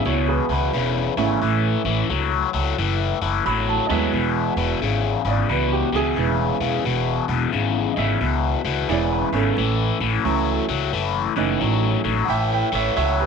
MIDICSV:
0, 0, Header, 1, 4, 480
1, 0, Start_track
1, 0, Key_signature, 4, "major"
1, 0, Tempo, 679502
1, 995, Time_signature, 4, 2, 24, 8
1, 9368, End_track
2, 0, Start_track
2, 0, Title_t, "Grand piano"
2, 0, Program_c, 0, 0
2, 39, Note_on_c, 0, 64, 69
2, 43, Note_on_c, 0, 73, 80
2, 186, Note_off_c, 0, 64, 0
2, 194, Note_off_c, 0, 73, 0
2, 198, Note_on_c, 0, 68, 67
2, 205, Note_on_c, 0, 71, 76
2, 345, Note_off_c, 0, 68, 0
2, 355, Note_off_c, 0, 71, 0
2, 369, Note_on_c, 0, 71, 86
2, 827, Note_on_c, 0, 52, 72
2, 828, Note_on_c, 0, 57, 72
2, 833, Note_on_c, 0, 61, 72
2, 838, Note_on_c, 0, 64, 86
2, 1443, Note_off_c, 0, 52, 0
2, 1444, Note_off_c, 0, 57, 0
2, 1446, Note_off_c, 0, 61, 0
2, 1448, Note_off_c, 0, 64, 0
2, 1774, Note_off_c, 0, 71, 0
2, 2442, Note_on_c, 0, 83, 94
2, 2594, Note_off_c, 0, 83, 0
2, 2605, Note_on_c, 0, 81, 80
2, 2730, Note_on_c, 0, 75, 68
2, 2745, Note_on_c, 0, 56, 78
2, 2748, Note_on_c, 0, 59, 76
2, 2753, Note_on_c, 0, 64, 89
2, 2756, Note_off_c, 0, 81, 0
2, 2762, Note_on_c, 0, 76, 92
2, 2770, Note_off_c, 0, 75, 0
2, 3363, Note_off_c, 0, 56, 0
2, 3364, Note_off_c, 0, 59, 0
2, 3367, Note_off_c, 0, 64, 0
2, 3691, Note_off_c, 0, 76, 0
2, 3727, Note_on_c, 0, 74, 73
2, 3877, Note_off_c, 0, 74, 0
2, 3884, Note_on_c, 0, 71, 86
2, 4036, Note_off_c, 0, 71, 0
2, 4042, Note_on_c, 0, 67, 76
2, 4195, Note_off_c, 0, 67, 0
2, 4205, Note_on_c, 0, 64, 80
2, 4208, Note_on_c, 0, 68, 101
2, 4349, Note_off_c, 0, 64, 0
2, 4350, Note_on_c, 0, 52, 61
2, 4351, Note_on_c, 0, 56, 59
2, 4354, Note_on_c, 0, 59, 59
2, 4359, Note_on_c, 0, 64, 69
2, 4458, Note_off_c, 0, 68, 0
2, 5081, Note_off_c, 0, 52, 0
2, 5081, Note_off_c, 0, 56, 0
2, 5083, Note_off_c, 0, 59, 0
2, 5085, Note_off_c, 0, 64, 0
2, 5608, Note_on_c, 0, 75, 60
2, 5639, Note_on_c, 0, 76, 86
2, 5649, Note_off_c, 0, 75, 0
2, 6259, Note_off_c, 0, 76, 0
2, 6274, Note_on_c, 0, 52, 61
2, 6276, Note_on_c, 0, 56, 58
2, 6278, Note_on_c, 0, 59, 62
2, 6285, Note_on_c, 0, 74, 78
2, 6286, Note_on_c, 0, 64, 66
2, 6437, Note_off_c, 0, 74, 0
2, 6446, Note_on_c, 0, 71, 83
2, 6597, Note_off_c, 0, 71, 0
2, 6598, Note_on_c, 0, 61, 75
2, 6605, Note_on_c, 0, 69, 87
2, 6756, Note_off_c, 0, 52, 0
2, 6757, Note_off_c, 0, 56, 0
2, 6758, Note_off_c, 0, 59, 0
2, 6762, Note_off_c, 0, 64, 0
2, 7228, Note_off_c, 0, 61, 0
2, 7232, Note_on_c, 0, 52, 63
2, 7233, Note_on_c, 0, 57, 59
2, 7239, Note_on_c, 0, 61, 61
2, 7241, Note_on_c, 0, 64, 65
2, 7512, Note_off_c, 0, 52, 0
2, 7513, Note_off_c, 0, 57, 0
2, 7516, Note_off_c, 0, 61, 0
2, 7517, Note_off_c, 0, 64, 0
2, 7533, Note_off_c, 0, 69, 0
2, 8023, Note_on_c, 0, 52, 66
2, 8026, Note_on_c, 0, 57, 60
2, 8027, Note_on_c, 0, 61, 65
2, 8035, Note_on_c, 0, 63, 73
2, 8642, Note_off_c, 0, 52, 0
2, 8643, Note_off_c, 0, 57, 0
2, 8644, Note_off_c, 0, 61, 0
2, 8648, Note_off_c, 0, 63, 0
2, 8653, Note_on_c, 0, 78, 72
2, 8686, Note_on_c, 0, 76, 85
2, 8686, Note_on_c, 0, 79, 91
2, 8688, Note_off_c, 0, 78, 0
2, 8831, Note_off_c, 0, 76, 0
2, 8837, Note_off_c, 0, 79, 0
2, 8852, Note_on_c, 0, 76, 72
2, 8852, Note_on_c, 0, 79, 88
2, 8994, Note_off_c, 0, 76, 0
2, 9000, Note_off_c, 0, 79, 0
2, 9004, Note_on_c, 0, 73, 71
2, 9007, Note_on_c, 0, 76, 89
2, 9150, Note_off_c, 0, 73, 0
2, 9151, Note_off_c, 0, 76, 0
2, 9160, Note_on_c, 0, 73, 81
2, 9161, Note_on_c, 0, 76, 92
2, 9308, Note_off_c, 0, 73, 0
2, 9315, Note_off_c, 0, 76, 0
2, 9327, Note_on_c, 0, 71, 80
2, 9329, Note_on_c, 0, 67, 67
2, 9368, Note_off_c, 0, 67, 0
2, 9368, Note_off_c, 0, 71, 0
2, 9368, End_track
3, 0, Start_track
3, 0, Title_t, "Overdriven electric guitar"
3, 0, Program_c, 1, 29
3, 39, Note_on_c, 1, 40, 77
3, 42, Note_on_c, 1, 47, 95
3, 314, Note_off_c, 1, 40, 0
3, 316, Note_off_c, 1, 47, 0
3, 347, Note_on_c, 1, 40, 71
3, 350, Note_on_c, 1, 47, 79
3, 499, Note_off_c, 1, 40, 0
3, 501, Note_off_c, 1, 47, 0
3, 520, Note_on_c, 1, 40, 79
3, 526, Note_on_c, 1, 49, 75
3, 795, Note_off_c, 1, 40, 0
3, 798, Note_off_c, 1, 49, 0
3, 829, Note_on_c, 1, 40, 76
3, 834, Note_on_c, 1, 49, 82
3, 981, Note_off_c, 1, 40, 0
3, 983, Note_off_c, 1, 49, 0
3, 1001, Note_on_c, 1, 45, 82
3, 1006, Note_on_c, 1, 52, 93
3, 1276, Note_off_c, 1, 45, 0
3, 1278, Note_off_c, 1, 52, 0
3, 1309, Note_on_c, 1, 45, 70
3, 1314, Note_on_c, 1, 52, 83
3, 1461, Note_off_c, 1, 45, 0
3, 1463, Note_off_c, 1, 52, 0
3, 1481, Note_on_c, 1, 45, 77
3, 1485, Note_on_c, 1, 54, 91
3, 1756, Note_off_c, 1, 45, 0
3, 1758, Note_off_c, 1, 54, 0
3, 1790, Note_on_c, 1, 45, 81
3, 1795, Note_on_c, 1, 54, 80
3, 1941, Note_off_c, 1, 45, 0
3, 1944, Note_off_c, 1, 54, 0
3, 1967, Note_on_c, 1, 45, 84
3, 1969, Note_on_c, 1, 52, 99
3, 2239, Note_off_c, 1, 45, 0
3, 2240, Note_off_c, 1, 52, 0
3, 2272, Note_on_c, 1, 45, 63
3, 2276, Note_on_c, 1, 52, 80
3, 2423, Note_off_c, 1, 45, 0
3, 2425, Note_off_c, 1, 52, 0
3, 2445, Note_on_c, 1, 45, 76
3, 2448, Note_on_c, 1, 54, 82
3, 2718, Note_off_c, 1, 45, 0
3, 2719, Note_off_c, 1, 54, 0
3, 2754, Note_on_c, 1, 45, 74
3, 2758, Note_on_c, 1, 54, 86
3, 2904, Note_off_c, 1, 45, 0
3, 2906, Note_off_c, 1, 54, 0
3, 2919, Note_on_c, 1, 40, 76
3, 2923, Note_on_c, 1, 47, 83
3, 3196, Note_off_c, 1, 40, 0
3, 3197, Note_off_c, 1, 47, 0
3, 3232, Note_on_c, 1, 40, 69
3, 3233, Note_on_c, 1, 47, 78
3, 3383, Note_off_c, 1, 40, 0
3, 3383, Note_off_c, 1, 47, 0
3, 3404, Note_on_c, 1, 40, 80
3, 3407, Note_on_c, 1, 49, 99
3, 3678, Note_off_c, 1, 40, 0
3, 3679, Note_off_c, 1, 49, 0
3, 3707, Note_on_c, 1, 40, 81
3, 3711, Note_on_c, 1, 49, 84
3, 3861, Note_off_c, 1, 40, 0
3, 3862, Note_off_c, 1, 49, 0
3, 3878, Note_on_c, 1, 40, 82
3, 3882, Note_on_c, 1, 47, 96
3, 4155, Note_off_c, 1, 40, 0
3, 4157, Note_off_c, 1, 47, 0
3, 4186, Note_on_c, 1, 40, 64
3, 4189, Note_on_c, 1, 47, 80
3, 4340, Note_off_c, 1, 40, 0
3, 4342, Note_off_c, 1, 47, 0
3, 4354, Note_on_c, 1, 40, 70
3, 4358, Note_on_c, 1, 49, 81
3, 4633, Note_off_c, 1, 40, 0
3, 4635, Note_off_c, 1, 49, 0
3, 4666, Note_on_c, 1, 40, 74
3, 4670, Note_on_c, 1, 49, 90
3, 4820, Note_off_c, 1, 40, 0
3, 4822, Note_off_c, 1, 49, 0
3, 4840, Note_on_c, 1, 40, 74
3, 4842, Note_on_c, 1, 47, 93
3, 5116, Note_off_c, 1, 40, 0
3, 5117, Note_off_c, 1, 47, 0
3, 5144, Note_on_c, 1, 40, 69
3, 5149, Note_on_c, 1, 47, 76
3, 5300, Note_off_c, 1, 40, 0
3, 5302, Note_off_c, 1, 47, 0
3, 5314, Note_on_c, 1, 40, 90
3, 5318, Note_on_c, 1, 49, 94
3, 5593, Note_off_c, 1, 40, 0
3, 5595, Note_off_c, 1, 49, 0
3, 5624, Note_on_c, 1, 40, 76
3, 5629, Note_on_c, 1, 49, 81
3, 5779, Note_off_c, 1, 40, 0
3, 5782, Note_off_c, 1, 49, 0
3, 5797, Note_on_c, 1, 40, 78
3, 5800, Note_on_c, 1, 47, 91
3, 6075, Note_off_c, 1, 40, 0
3, 6077, Note_off_c, 1, 47, 0
3, 6109, Note_on_c, 1, 40, 66
3, 6113, Note_on_c, 1, 47, 79
3, 6262, Note_off_c, 1, 40, 0
3, 6264, Note_off_c, 1, 47, 0
3, 6282, Note_on_c, 1, 40, 86
3, 6284, Note_on_c, 1, 49, 84
3, 6557, Note_off_c, 1, 40, 0
3, 6559, Note_off_c, 1, 49, 0
3, 6589, Note_on_c, 1, 40, 73
3, 6594, Note_on_c, 1, 49, 87
3, 6742, Note_off_c, 1, 40, 0
3, 6744, Note_off_c, 1, 49, 0
3, 6767, Note_on_c, 1, 45, 74
3, 6770, Note_on_c, 1, 52, 95
3, 7040, Note_off_c, 1, 45, 0
3, 7042, Note_off_c, 1, 52, 0
3, 7068, Note_on_c, 1, 45, 64
3, 7074, Note_on_c, 1, 52, 79
3, 7222, Note_off_c, 1, 45, 0
3, 7224, Note_off_c, 1, 52, 0
3, 7240, Note_on_c, 1, 45, 80
3, 7243, Note_on_c, 1, 54, 80
3, 7516, Note_off_c, 1, 45, 0
3, 7518, Note_off_c, 1, 54, 0
3, 7550, Note_on_c, 1, 45, 75
3, 7552, Note_on_c, 1, 54, 83
3, 7702, Note_off_c, 1, 45, 0
3, 7703, Note_off_c, 1, 54, 0
3, 7722, Note_on_c, 1, 45, 90
3, 7725, Note_on_c, 1, 52, 91
3, 7998, Note_off_c, 1, 45, 0
3, 7999, Note_off_c, 1, 52, 0
3, 8024, Note_on_c, 1, 45, 78
3, 8029, Note_on_c, 1, 52, 72
3, 8179, Note_off_c, 1, 45, 0
3, 8182, Note_off_c, 1, 52, 0
3, 8194, Note_on_c, 1, 45, 76
3, 8201, Note_on_c, 1, 54, 84
3, 8474, Note_off_c, 1, 45, 0
3, 8477, Note_off_c, 1, 54, 0
3, 8507, Note_on_c, 1, 45, 81
3, 8511, Note_on_c, 1, 54, 82
3, 8661, Note_off_c, 1, 45, 0
3, 8663, Note_off_c, 1, 54, 0
3, 8675, Note_on_c, 1, 45, 78
3, 8678, Note_on_c, 1, 52, 87
3, 8954, Note_off_c, 1, 45, 0
3, 8955, Note_off_c, 1, 52, 0
3, 8986, Note_on_c, 1, 45, 69
3, 8990, Note_on_c, 1, 52, 85
3, 9140, Note_off_c, 1, 45, 0
3, 9142, Note_off_c, 1, 52, 0
3, 9156, Note_on_c, 1, 45, 87
3, 9160, Note_on_c, 1, 54, 98
3, 9368, Note_off_c, 1, 45, 0
3, 9368, Note_off_c, 1, 54, 0
3, 9368, End_track
4, 0, Start_track
4, 0, Title_t, "Upright bass"
4, 0, Program_c, 2, 32
4, 34, Note_on_c, 2, 37, 93
4, 264, Note_off_c, 2, 37, 0
4, 346, Note_on_c, 2, 37, 78
4, 472, Note_off_c, 2, 37, 0
4, 516, Note_on_c, 2, 28, 88
4, 746, Note_off_c, 2, 28, 0
4, 827, Note_on_c, 2, 32, 81
4, 954, Note_off_c, 2, 32, 0
4, 998, Note_on_c, 2, 33, 93
4, 1227, Note_off_c, 2, 33, 0
4, 1304, Note_on_c, 2, 33, 89
4, 1432, Note_off_c, 2, 33, 0
4, 1480, Note_on_c, 2, 37, 76
4, 1708, Note_off_c, 2, 37, 0
4, 1792, Note_on_c, 2, 37, 81
4, 1917, Note_off_c, 2, 37, 0
4, 1966, Note_on_c, 2, 30, 93
4, 2192, Note_off_c, 2, 30, 0
4, 2271, Note_on_c, 2, 30, 82
4, 2396, Note_off_c, 2, 30, 0
4, 2442, Note_on_c, 2, 33, 93
4, 2670, Note_off_c, 2, 33, 0
4, 2753, Note_on_c, 2, 39, 82
4, 2878, Note_off_c, 2, 39, 0
4, 2918, Note_on_c, 2, 28, 90
4, 3148, Note_off_c, 2, 28, 0
4, 3224, Note_on_c, 2, 28, 87
4, 3352, Note_off_c, 2, 28, 0
4, 3396, Note_on_c, 2, 32, 83
4, 3626, Note_off_c, 2, 32, 0
4, 3706, Note_on_c, 2, 32, 89
4, 3834, Note_off_c, 2, 32, 0
4, 3876, Note_on_c, 2, 37, 92
4, 4106, Note_off_c, 2, 37, 0
4, 4183, Note_on_c, 2, 37, 83
4, 4312, Note_off_c, 2, 37, 0
4, 4355, Note_on_c, 2, 28, 91
4, 4586, Note_off_c, 2, 28, 0
4, 4664, Note_on_c, 2, 28, 75
4, 4792, Note_off_c, 2, 28, 0
4, 4835, Note_on_c, 2, 28, 92
4, 5065, Note_off_c, 2, 28, 0
4, 5145, Note_on_c, 2, 28, 88
4, 5273, Note_off_c, 2, 28, 0
4, 5319, Note_on_c, 2, 32, 79
4, 5548, Note_off_c, 2, 32, 0
4, 5630, Note_on_c, 2, 32, 85
4, 5756, Note_off_c, 2, 32, 0
4, 5800, Note_on_c, 2, 37, 86
4, 6029, Note_off_c, 2, 37, 0
4, 6105, Note_on_c, 2, 37, 84
4, 6233, Note_off_c, 2, 37, 0
4, 6276, Note_on_c, 2, 28, 85
4, 6506, Note_off_c, 2, 28, 0
4, 6586, Note_on_c, 2, 32, 81
4, 6714, Note_off_c, 2, 32, 0
4, 6757, Note_on_c, 2, 33, 99
4, 6987, Note_off_c, 2, 33, 0
4, 7066, Note_on_c, 2, 33, 89
4, 7194, Note_off_c, 2, 33, 0
4, 7241, Note_on_c, 2, 37, 78
4, 7470, Note_off_c, 2, 37, 0
4, 7551, Note_on_c, 2, 37, 81
4, 7677, Note_off_c, 2, 37, 0
4, 7719, Note_on_c, 2, 30, 89
4, 7948, Note_off_c, 2, 30, 0
4, 8029, Note_on_c, 2, 30, 85
4, 8156, Note_off_c, 2, 30, 0
4, 8203, Note_on_c, 2, 33, 86
4, 8431, Note_off_c, 2, 33, 0
4, 8510, Note_on_c, 2, 33, 88
4, 8636, Note_off_c, 2, 33, 0
4, 8678, Note_on_c, 2, 33, 90
4, 8908, Note_off_c, 2, 33, 0
4, 8989, Note_on_c, 2, 33, 89
4, 9116, Note_off_c, 2, 33, 0
4, 9158, Note_on_c, 2, 37, 79
4, 9368, Note_off_c, 2, 37, 0
4, 9368, End_track
0, 0, End_of_file